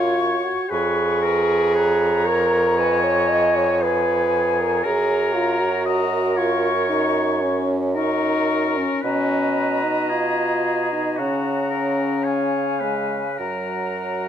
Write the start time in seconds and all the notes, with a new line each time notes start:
Already playing: F#2 F4 C#5 C#6
0.45 F#4
0.69 F2 G#4 B4 C#5 C#6
1.21 A#4 B4
1.74 B4 C#5 A#5
2.26 A#4 C#5
2.77 B4 D#5 G#5
3.03 C#5
3.30 D#5
3.57 C#5
3.82 G#4 B4 C#5 G#5
4.60 A#4
4.83 F#2 G#4 A#4 A#5
5.35 F4
5.61 F#4
5.86 A#4 D#5 A#5
6.37 F4 C#5 C#6
6.89 D#4
7.42 C#4
7.95 D#4 A#4 C#6
8.77 C#4
9.02 B2 C#4 B4 D#5 A#5
9.84 D#4
10.09 F4 G#4
10.92 D#4
11.16 C#3 C#4 F#4 F#5 A#5
11.70 A#4
12.23 C#5 F5 G#5
12.80 G#3 B4
13.38 F#2 F#3 A#4 F#5 A#5